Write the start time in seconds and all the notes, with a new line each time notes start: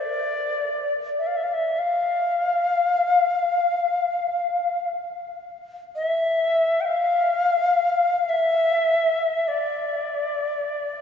Already playing: D5
1.19 E5
1.27 F5
1.36 E5
1.44 F5
1.54 E5
1.79 F5
5.96 E5
6.81 G5
6.85 F5
8.29 E5
9.48 D5